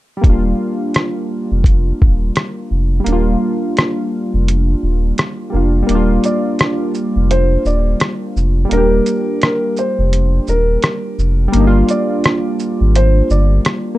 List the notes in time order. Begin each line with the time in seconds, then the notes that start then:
0.17 G3
0.21 D#1 A#3 D4, kick, closed hi-hat
0.30 F4
0.94 cross-stick, closed hi-hat
1.52 F1
1.64 kick, closed hi-hat
2.02 D#1, kick
2.36 cross-stick, closed hi-hat
2.71 F1
3.00 G3
3.04 D#1 A#3, closed hi-hat
3.08 D4
3.12 F4
3.77 cross-stick, closed hi-hat
4.34 F1
4.48 closed hi-hat
4.83 D#1
5.18 cross-stick, closed hi-hat
5.50 F1 G3 A#3
5.54 D4 F4
5.83 G3
5.87 D#1 A#3, closed hi-hat
5.91 D4
5.95 F4
6.24 D5, closed hi-hat, shaker
6.59 cross-stick, closed hi-hat
6.94 shaker
7.16 F1
7.31 C5, closed hi-hat
7.65 D#1 D5, shaker
8.00 cross-stick, closed hi-hat
8.36 F1, shaker
8.65 G3
8.69 D#1 A#3 A#4, closed hi-hat
8.73 D4
8.77 G4
9.06 closed hi-hat, shaker
9.42 A#4, cross-stick, closed hi-hat
9.77 C5, shaker
9.99 F1
10.13 closed hi-hat
10.47 D#1 A#4, shaker
10.82 cross-stick, closed hi-hat
11.19 F1, shaker
11.48 G3
11.52 G1 A#3, closed hi-hat
11.57 D4
11.61 D#4
11.67 F4
11.89 D5, closed hi-hat, shaker
12.24 cross-stick, closed hi-hat
12.59 shaker
12.81 G#1
12.95 C5, closed hi-hat
13.30 G1 D5, shaker
13.65 cross-stick, closed hi-hat
13.95 A#3